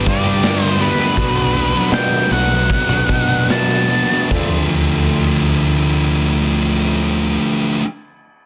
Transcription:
0.06 G2 D3 G3 B3 D4 D5, muted clean electric guitar stroke, kick, closed hi-hat
0.24 G3 B3 D4 G4
0.41 G2 D3 G3 B3 D4 G4, snare, closed hi-hat
0.63 C5
0.79 D3 G3 B3 D4 G4 B4, closed hi-hat
0.98 G3 B3 D4 G4
1.16 B1 B2 F#3 B3 D4 F#4, kick, closed hi-hat
1.54 B2 F#3 B3 D4, closed hi-hat
1.74 F#3 B3 D4
1.91 B2 F#3 B3 D4 G5, snare, closed hi-hat
2.30 B1 B2 F#3 B3 D4 F#4 F#5, closed hi-hat
2.50 F#3 B3 D4, muted clean electric guitar stroke
2.69 kick, closed hi-hat
2.89 B1 F#3 B3 D4 F#4
3.09 B2 F#3 B3 D4, muted clean electric guitar stroke, kick, closed hi-hat
3.29 B3 D4 F#4
3.49 B2 F#3 B3 D4 F#4 A5, snare, closed hi-hat
3.89 B2 F#3 B3 D4 F#4, closed hi-hat
4.10 F#3 B3 D4 F#4
4.31 D2 D3 F3 A3 D4, kick, floor tom, ride bell
4.35 F4

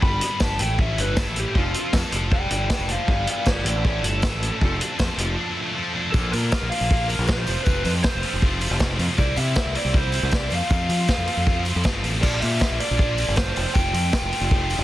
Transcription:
0.01 G1 G3 B3 D4 B4 B5, kick
0.21 B3, closed hi-hat
0.40 G1 G4 A5, kick, snare, tambourine
0.58 A1 A2 A3 C#4 E4 A4 G5, closed hi-hat
0.79 C#4 E5, kick
0.98 G1 A3 B4, closed hi-hat
1.17 E4 A4, kick, snare, tambourine
1.27 A1
1.36 C#4 G4, closed hi-hat
1.54 F1 F3 A3 C4 F4 A4, kick
1.74 C4, closed hi-hat
1.93 F2 A4, kick, snare, tambourine
2.11 F1 D3 F3 D4 F4 A4, closed hi-hat
2.30 D4 D5 G5, kick
2.50 G1 A3 D5 G5, closed hi-hat
2.68 E4 D5, kick, snare, tambourine
2.73 G5
2.79 F1
2.88 D4 C5 F5, closed hi-hat
3.07 G1 G2 G3 B3 D4 B4 D5 F5, kick
3.27 B3 D5 F5, closed hi-hat
3.46 G1 G4 A#4 D5, kick, snare, tambourine
3.64 A1 A2 A3 C#4 E4 A4 D5, closed hi-hat
3.84 C#4 A4 D5, kick
4.03 G1 A3 A4, closed hi-hat
4.22 E4, kick, snare, tambourine
4.32 A1
4.42 C#4, closed hi-hat
4.61 F1 F3 A3 C4 F4 A4, kick
4.80 D4, closed hi-hat
4.99 F2 C5, kick, snare, tambourine
5.17 F1 D3 F3 D4 F4 A4, closed hi-hat
5.37 D4
5.56 A3
5.75 F3 A3 C4 F4 A4
5.93 D4
6.12 A#1 A#2 D3 F3 A#3 D4 F4 A4, kick, tambourine
6.31 A#2 A#3 D4 F4 A#4, open hi-hat, tambourine
6.51 D3 F3 A#3 D4 F4, kick, snare, tambourine
6.62 A#1
6.69 A#3 D4 F4 F5, open hi-hat, tambourine
6.81 A#1
6.89 F3 A#3 D4 F4, kick, tambourine
7.08 A#3 D4 F4 A#4, open hi-hat, tambourine
7.19 A#1
7.25 A#2 D3 A#3 C5, kick, snare, tambourine
7.29 D4 F4
7.46 F1 F2 C3 F3 A3 C4 F4, open hi-hat, tambourine
7.64 F1 F2 C3 F3 A3 C4 B4, kick, tambourine
7.68 F4
7.84 F2 F3 A3 C4 F4 B4, open hi-hat, tambourine
8.03 F3 A3 C4 F4 C5, kick, snare, tambourine
8.15 F1
8.22 F3 A3 C4 F4, open hi-hat, tambourine
8.33 F1
8.41 F3 A3 C4 F4, kick, tambourine
8.60 F3 A3 C4 F4, open hi-hat, tambourine
8.71 F1
8.79 F2 C3 F3 A3 C4 F4, kick, snare, tambourine
8.98 F2 F3 A3 C4 F4, open hi-hat, tambourine
9.17 C2 C3 E3 G3 C4 E4 D5, kick, tambourine
9.36 C3 G3 C4 E4 E5, open hi-hat, tambourine
9.55 C3 E3 G3 C4 E4, kick, snare, tambourine
9.65 C2
9.74 G3 C4 E4 D5, open hi-hat, tambourine
9.85 C2
9.93 C3 G3 C4 E4, kick, tambourine
9.97 C5
10.12 G3 C4 E4, open hi-hat, tambourine
10.23 C2
10.31 C3 E3 G3 C4 E4 D5, kick, snare, tambourine
10.50 F2 C3 F3 A3 C4 F4, open hi-hat, tambourine
10.55 F5
10.70 F2 C3 F3 A3 C4 F4, kick, tambourine
10.89 F3 A3 C4 F4, open hi-hat, tambourine
11.08 F3 A3 C4 F4, kick, snare, tambourine
11.18 F2
11.27 F3 A3 C4 F4, open hi-hat
11.37 F2
11.45 F3 A3 C4 F4, kick, tambourine
11.65 F3 A3 C4 F4, open hi-hat, tambourine
11.76 F2
11.84 G1 F2 C3 F3 A3 C4 F4, kick, snare, tambourine
12.02 A1 F3 A3 C4 F4, open hi-hat, tambourine
12.22 A#1 A#2 D3 F3 A#3 D4 F4 D5, kick, crash, tambourine
12.41 A#2 A#3 D4 F4 E5, open hi-hat, tambourine
12.59 D3 F3 A#3 D4 F4, kick, snare, tambourine
12.70 A#1
12.78 A#3 D4 F4 D5, open hi-hat, tambourine
12.91 A#1
12.97 F3 A#3 D4 F4, kick, tambourine
13.17 A#3 D4 F4, open hi-hat, tambourine
13.28 G1
13.36 A#2 D3 F3 A#3 D4 F4 C5, kick, snare, tambourine
13.55 F1 F2 C3 F3 A3 C4 F4, open hi-hat, tambourine
13.74 F1 F2 C3 F3 A3 C4 F4 G5, kick, tambourine
13.92 F2 F3 A3 C4 F4, open hi-hat, tambourine
14.12 F3 A3 C4 F4, kick, snare, tambourine
14.21 F1
14.31 F3 A3 C4 F4, open hi-hat, tambourine
14.41 F1
14.49 F3 A3 C4 F4, kick, tambourine
14.69 F3 A3 C4 F4, open hi-hat, tambourine
14.78 F1

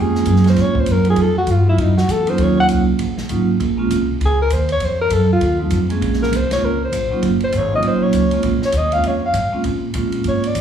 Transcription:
Already playing: F2 G#3 A#3 C4 C#4 F4
0.02 G#4
0.15 snare
0.26 F#2, kick, hi-hat pedal, ride
0.36 snare
0.44 G#3 A#3 C4 C#4 F4, snare, ride
0.49 C5
0.56 G#2, kick, snare, ride
0.61 C#5
0.75 kick
0.80 C5
0.86 F#2, kick, hi-hat pedal, ride
0.92 A#4
1.05 F#3 A3 C4 D#4 F4, ride
1.10 G#4
1.16 F2, kick, ride
1.22 A4
1.38 F#4
1.47 G2, kick, hi-hat pedal, ride
1.51 F4
1.66 F#3 A3 C4 D#4 E4 F4
1.78 F#2, kick, ride
1.82 D#4
1.98 F#4, snare
2.08 E2 A4, kick, hi-hat pedal, ride
2.26 F#3 A#3 C#4 D#4 F4 C5, ride
2.38 D#2 F#3 A#3 C#4 D#4 F4, kick, ride
2.43 C#5
2.60 F#5
2.69 C2, kick, hi-hat pedal, ride
2.99 A#1, kick, ride
3.18 snare
3.29 G#1 F#3 A#3 C#4 D#4 F4, kick, hi-hat pedal, ride
3.60 A#1, kick, ride
3.77 G#3 A#3 C4 C#4 F4
3.90 C2, kick, hi-hat pedal, ride
4.20 C#2, kick, ride
4.25 G#4
4.42 A#4
4.50 D#2 C5, kick, hi-hat pedal, ride
4.69 C#5, ride
4.80 F2, kick, ride
4.85 C5
5.02 A#4
5.10 F#2 A4, kick, hi-hat pedal, ride
5.33 F4
5.41 D#2, kick, ride
5.59 F#3 A3 C4 D#4 F4
5.70 F2, kick, hi-hat pedal, ride
5.90 G#3 A#3 C4 C#4 G#4, ride
6.02 A#1, kick, ride
6.13 snare
6.22 A#4, snare
6.32 C2 C5, kick, hi-hat pedal, ride
6.51 G#3 A#3 C4 C#4 F4 C#5, snare, ride
6.62 C#2 A#4, kick
6.85 C5
6.92 A#1, kick, hi-hat pedal, ride
7.11 F#3 A#3 C#4 D#4 F4, muted upright bass stroke
7.22 F#1, kick, ride
7.40 C5, ride
7.52 G#1, kick, hi-hat pedal, ride
7.57 C#5
7.72 F#3 A#3 C#4 D#4 F4 D#5
7.83 A#1, kick, ride
7.87 C5
8.01 F#3 A#3 C#4 D#4 F4 C#5
8.12 C#2, kick, hi-hat pedal, ride
8.31 G#3 A#3 C4 C#4 F4, ride
8.43 A#1, kick, ride
8.61 muted upright bass stroke, snare
8.65 C#5
8.72 D#2, kick, hi-hat pedal, ride
8.78 D#5
8.92 G#3 A#3 C4 C#4 F4 F5, ride
9.04 F2, kick, ride
9.08 C#5
9.26 F5
9.34 G#2, kick, hi-hat pedal, ride
9.52 G#3 A#3 C4 C#4 F4, muted upright bass stroke
9.64 A#2, kick, ride
9.94 A#2 G#3 A#3 C4 C#4 F4, kick, hi-hat pedal, ride
10.12 ride
10.24 G#2, kick, ride
10.29 C#5
10.44 D5, ride
10.55 F2, kick, hi-hat pedal, ride

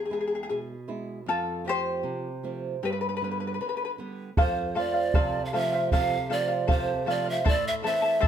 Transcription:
Already playing: E2
0.06 G#4
0.10 G#3 B3 E4 G#4
0.21 G#4
0.28 G#4
0.35 G#4
0.43 G#4
0.49 B2 G#4
0.88 G#3 B3 E4
1.26 F2 F4 A4
1.65 F3 A3 C4 G4
1.69 C5
2.03 C3
2.43 F3 A3 C4
2.83 G2 G4 B4
2.93 B4
3.01 B4
3.09 B4
3.17 B4
3.21 D3 G3 B3 B4
3.31 B4
3.40 B4
3.47 B4
3.54 B4
3.60 D3 B4
3.69 B4
3.77 B4
3.85 B4
3.98 D3 G3 B3
4.37 F2 A4 C5 F5, bombo low
4.75 F3 A3 C4 A4 C5 D5 F5
4.94 C5 F5
5.14 C3 A4 C5 F5, bombo low
5.45 F5
5.53 F3 A3 C4 A4 C5 E5 F5
5.73 C5 F5
5.92 C3 A4 C5 F5, bombo low
6.29 F3 A3 C4 A4 C5 D5 F5
6.48 C5 F5
6.67 C3 A4 C5 F5, bombo low
7.06 F3 A3 C4 A4 C5 D5 F5
7.26 C5 F5
7.30 E5
7.44 A2 E4 A4 C5 D5 E5 A5, bombo low
7.68 E5
7.83 E3 A3 C4 E4 A4 E5 A5
8.02 E4 A4 A5
8.20 E2 E4 A4 C5 E5 A5, bombo low

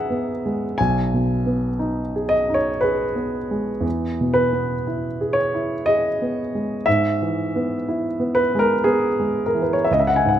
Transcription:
Already playing: G#2 B3 D#4 G#4 B4 D#5 E5 F#5 G#5 A#5
0.10 B3
0.46 G#3
0.78 B1 G#5
1.14 B2
1.46 B3
1.79 D#4
2.16 G#4
2.29 D#5
2.49 D#4
2.54 C#5
2.81 G#4 B4
3.16 B3
3.51 G#3
3.81 E2
4.21 B2
4.34 B4
4.53 B3
4.87 E4
5.21 G#4
5.33 C#5
5.54 E4
5.86 G#4 D#5
6.22 B3
6.55 G#3
6.86 G#2 E5
7.22 E3
7.56 B3
7.89 E4
8.20 B3
8.35 B4
8.55 G#3
8.59 A#4
8.84 B3 G#4
9.20 G#3
9.46 A#4
9.55 E3
9.62 B4
9.73 C#5
9.85 E5
9.91 C#2 D#5
10.00 E5
10.07 F#5
10.16 G#5
10.25 G#2 F#5

